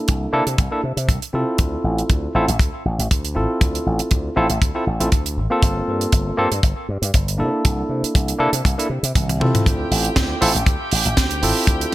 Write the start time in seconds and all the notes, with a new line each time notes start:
Already playing: A#3 D4 E4 A4
0.08 C2, kick, closed hi-hat
0.32 C3 A#3 D4 E4 A4
0.47 C3, closed hi-hat
0.58 C2, kick, closed hi-hat
0.71 A#3 D4 E4 A4
0.84 C3
0.97 C3, closed hi-hat
1.08 C2, kick, closed hi-hat
1.22 closed hi-hat
1.33 C3 C4 E4 F4 A4
1.58 D2, kick, closed hi-hat
1.84 A1
1.98 closed hi-hat
2.10 D2, kick, closed hi-hat
2.35 A1 C4 E4 F4 A4
2.48 A1, closed hi-hat
2.59 D2, kick, closed hi-hat
2.85 A1
2.99 A1, closed hi-hat
3.11 D2, kick, closed hi-hat
3.25 closed hi-hat
3.34 A1 C4 E4 F4 A4
3.61 D2, kick, closed hi-hat
3.75 closed hi-hat
3.86 A1
3.99 muted slap bass stroke, closed hi-hat
4.11 D2, kick, closed hi-hat
4.36 A1 C4 E4 F4 A4
4.50 A1, closed hi-hat
4.62 D2, kick, closed hi-hat
4.75 C4 E4 F4 A4
4.87 A1
5.00 A1 C4 E4 F4 A4, closed hi-hat
5.12 D2, kick, closed hi-hat
5.26 closed hi-hat
5.37 A1
5.50 A#3 C4 F4 A4
5.63 G1, kick, closed hi-hat
5.88 G2
6.01 closed hi-hat
6.12 G1, kick, closed hi-hat
6.37 G2 A#3 C4 F4 A4
6.52 G2, closed hi-hat
6.63 G1, kick, closed hi-hat
6.89 G2
7.02 G2, closed hi-hat
7.14 G1, kick, closed hi-hat
7.28 closed hi-hat
7.38 C3 A#3 D4 E4 A4
7.65 C2, kick, closed hi-hat
7.89 C3
8.03 muted slap bass stroke, closed hi-hat
8.15 C2, kick, closed hi-hat
8.28 closed hi-hat
8.39 C3 A#3 D4 E4 A4
8.53 C3, closed hi-hat
8.65 C2, kick, closed hi-hat
8.78 A#3 D4 E4 A4, closed hi-hat
8.90 C3
9.03 C3, closed hi-hat
9.15 C2, kick, closed hi-hat, high tom
9.29 closed hi-hat, high tom
9.40 C3 C4 E4 F4 A4, mid tom
9.55 closed hi-hat, mid tom
9.66 D2 G4 G5, kick, closed hi-hat
9.91 A1, open hi-hat
10.05 closed hi-hat
10.16 D2, kick, snare, closed hi-hat
10.41 A1 C4 E4 F4 A4, open hi-hat
10.55 A1, closed hi-hat
10.66 D2, kick, closed hi-hat
10.91 A1, open hi-hat
11.06 A1, closed hi-hat
11.17 D2, kick, snare, closed hi-hat
11.31 closed hi-hat
11.42 A1 C4 E4 F4 A4, open hi-hat
11.67 D2, kick, closed hi-hat
11.81 closed hi-hat